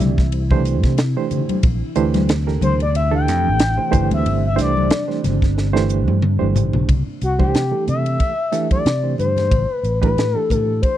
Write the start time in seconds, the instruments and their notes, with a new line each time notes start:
Already playing: ambient pad C3 E3 C4 E4, reed electric piano E3 A3 D4 G4 D5
0.00 fingered electric bass C2, snare, hi-hat pedal, ride, high conga, low conga
0.18 kick, snare
0.32 reed electric piano G4 C5, ride
0.50 reed electric piano E3 A3 D4 G4 C5, kick, low conga
0.65 hi-hat pedal, ride
0.83 fingered electric bass C3, kick, snare, ride
0.98 snare, ride
1.16 reed electric piano E3 A3 D4 G4 C5
1.31 hi-hat pedal, ride, low conga
1.49 ride, high conga
1.63 fingered electric bass A#1, ambient pad C3 E3 C4 D4, kick, ride
1.95 fingered electric bass D2, reed electric piano E3 A3 D4 G4 C5, hi-hat pedal, ride
2.14 snare, ride, high conga
2.29 snare, ride
2.47 reed electric piano E3 D4 G4 A4 A#4, snare
2.61 fingered electric bass D2, analog synth lead C5, hi-hat pedal, ride, high conga, low conga
2.80 analog synth lead D5, ride
2.94 reed electric piano G4 C5, analog synth lead E5, ride
3.11 reed electric piano E3 A3 D4 G4 A4, analog synth lead G5
3.28 fingered electric bass F2, snare, hi-hat pedal, ride
3.47 fingered electric bass A1
3.59 snare, ride
3.77 reed electric piano E3 A3 D4 G4 C5
3.91 fingered electric bass G1, reed electric piano E3 A3 D4 G4 C5, ambient pad G3 D4, kick, hi-hat pedal, ride, low conga
4.11 fingered electric bass D2, analog synth lead E5, ride, high conga
4.25 fingered electric bass G1, ride
4.47 analog synth lead E5
4.56 fingered electric bass C2, reed electric piano E3 A3 D4 G4 C5, snare, hi-hat pedal, ride
4.61 analog synth lead D5
4.77 high conga
4.90 snare, ride
5.08 reed electric piano E3 A3 D4 G4 C5, snare
5.24 fingered electric bass G1, snare, hi-hat pedal, ride, high conga, low conga
5.42 kick, snare
5.56 reed electric piano G4 C5, snare
5.73 reed electric piano E3 A3 D4 G4 C5, snare
5.89 hi-hat pedal
6.08 fingered electric bass G2, high tom
6.22 mid tom
6.39 fingered electric bass G1, reed electric piano E3 A3 D4 G4 C5, high conga
6.55 fingered electric bass A1, floor tom, hi-hat pedal, low conga
6.73 fingered electric bass B1, floor tom, low conga
6.88 fingered electric bass C2, kick, ride, low conga
7.21 fingered electric bass C2, analog synth lead F#4, hi-hat pedal, ride
7.39 reed electric piano E3 A3 D4 G4 C5, analog synth lead G4, kick, high conga
7.55 fingered electric bass C3, snare, ride
7.71 reed electric piano E3 A3 D4 G4 A4
7.88 fingered electric bass C3, analog synth lead E5, hi-hat pedal, ride, low conga
8.06 ride
8.20 kick, ride
8.52 reed electric piano E3 A3 D4 G4 A4, snare, hi-hat pedal, ride
8.71 analog synth lead D5, kick, ride, high conga
8.86 fingered electric bass C3, snare, ride
9.03 reed electric piano E3 A3 D4 G4 C5
9.18 fingered electric bass G2, analog synth lead C5, hi-hat pedal, ride, low conga
9.37 snare, ride, high conga
9.51 fingered electric bass A1, kick, ride, low conga
9.74 analog synth lead B4
9.83 fingered electric bass A1, hi-hat pedal, ride
10.01 reed electric piano E3 A3 D4 G4 B4, analog synth lead B4, kick, ride, high conga
10.17 fingered electric bass A2, snare, ride
10.35 reed electric piano E3 A3 D4 G4 A4, analog synth lead A4
10.50 fingered electric bass A2, analog synth lead A4, kick, hi-hat pedal, ride, low conga
10.82 analog synth lead C5, kick, ride